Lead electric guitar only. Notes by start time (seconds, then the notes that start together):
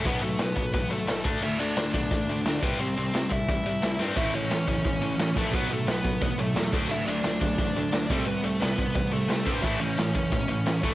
0.06 B3 B4
0.23 A3 A4
0.40 B3 B4
0.74 B3 B4
0.91 A3 A4
1.43 E4 E5
1.59 D4 D5
1.93 D4 D5
2.63 B3 B4
2.80 C4 C5
3.32 E4 E5
4.17 E4 E5
4.35 C#4 C#5
4.68 C#4 C#5
5.37 A3 A4
5.54 B3 B4
5.72 A3 A4
5.90 B3 B4
6.23 B3 B4
6.39 A3 A4
6.91 E4 E5
7.06 D4 D5
7.40 D4 D5
8.11 A3 A4
8.26 B3 B4
8.44 A3 A4
8.61 B3 B4
8.95 B3 B4
9.13 A3 A4
9.63 E4 E5
9.79 C#4 C#5
10.15 C#4 C#5
10.84 A3 A4